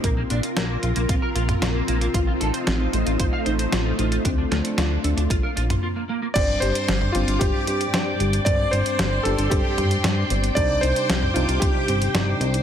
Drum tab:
CC |----------------|----------------|----------------|x---------------|
HH |x-xxx-xxx-xxx-xx|x-xxx-xxx-xxx-xx|x-xxx-xxx-xx----|x-xxx-xxx-xxx-xx|
SD |----o-------o---|----o-------o---|--o-o-----------|----o-------o---|
T2 |-----------o----|----------------|-----------o----|-----o----------|
BD |o-------o-------|o-------o-------|o-------o-------|o-------o-------|

CC |----------------|----------------|
HH |x-xxx-xxx-xxx-xx|x-xxx-xxx-xxx-xx|
SD |----o-------o---|----o-------o---|
T2 |----------o-----|-----o----------|
BD |o-------o-------|o-------o-------|